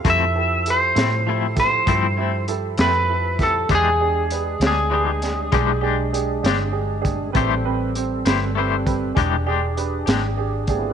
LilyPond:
<<
  \new Staff \with { instrumentName = "Electric slide guitar" } { \time 12/8 \key e \phrygian \tempo 4. = 66 e''4 c''4. c''4. r8 b'4 a'8 | gis'4. gis'2 r2 r8 | r1. | }
  \new Staff \with { instrumentName = "Upright piano" } { \time 12/8 \key e \phrygian <e' g' a'>8 <e' g' a'>8 <e' g' a'>8 <e' g' a'>8 <e' g' a'>8 <e' g' a'>8 <e' g' a'>8 <e' g' c''>8 <e' g' a'>8 <e' g' a'>8 <e' g' a'>8 <e' g' a'>8 | <d' g' gis'>8 <d' g' gis'>8 <d' g' b'>8 <d' g' gis'>8 <d' g' b'>8 <d' g' gis'>8 <d' g' gis'>8 <d' g' gis'>8 <d' g' gis'>8 <d' g' gis'>8 <d' g' gis'>8 <d' g' gis'>8 | <c' g' b'>8 <c' g' b'>8 <c' g' c''>8 <c' g' b'>8 <c' g' b'>8 <c' g' b'>8 <d' g' gis'>8 <d' g' gis'>8 <d' g' b'>8 <d' g' gis'>8 <d' g' gis'>8 <d' g' gis'>8 | }
  \new Staff \with { instrumentName = "Tonewheel organ" } { \time 12/8 \key e \phrygian <f e' a'>1. | <gis d' gis'>1. | <g c' a'>2. <d' g' gis'>2. | }
  \new Staff \with { instrumentName = "Clean electric guitar" } { \time 12/8 \key e \phrygian <f a c' e'>8 r4 <a c' e'>8 <f a c' e'>8 r8 <f a c' e'>8 <a c' e'>8 r8 <a c' e'>8 r4 | <e gis d' g'>8 r4 <gis d' g'>8 <e gis d' g'>8 r8 <e gis d' g'>8 <gis d' g'>8 r8 <gis d' g'>8 r4 | <a e' g' c''>8 r4 <e' g' c''>8 <a e' g' c''>8 r8 <e gis d' g'>8 <gis d' g'>8 r8 <gis d' g'>8 r4 | }
  \new Staff \with { instrumentName = "Fingered electric bass" } { \clef bass \time 12/8 \key e \phrygian f,4. a,4. g,4. f,4. | e,4. d,4. b,,4. g,,4. | a,,4. g,,4. e,,4. gis,,4. | }
  \new DrumStaff \with { instrumentName = "Drums" } \drummode { \time 12/8 <hh bd>4 hh8 <hh sn>4 <hh bd sn>8 <hh bd>4 hh8 <hh sn>4 <hh bd sn>8 | <hh bd>4 hh8 <hh sn>4 <hh sn>8 <hh bd>4 hh8 <hh sn>4 <hh bd>8 | <hh bd>4 hh8 <hh sn>4 <hh bd>8 <hh bd>4 hh8 <hh sn>4 <hh bd>8 | }
>>